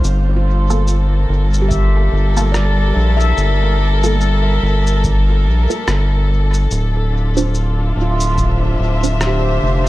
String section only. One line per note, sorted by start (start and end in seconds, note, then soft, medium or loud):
0.00 6.71 D4 medium
0.00 1.31 F4 medium
0.00 1.33 C5 medium
0.04 6.71 G3 medium
0.36 9.40 A4 medium
1.00 6.71 A#4 medium
6.71 9.89 D3 medium
6.81 9.89 D4 medium
7.05 9.89 F4 medium
7.90 9.89 E5 medium
8.30 9.89 C5 medium